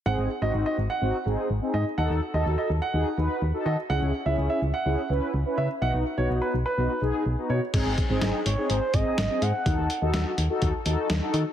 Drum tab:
CC |--------|--------|--------|--------|
HH |--------|--------|--------|--------|
SD |--------|--------|--------|--------|
BD |--------|--------|--------|--------|

CC |x-------|--------|
HH |xxxxxxxx|xxxxxxxx|
SD |--o---o-|--o---o-|
BD |oo---o--|o---o---|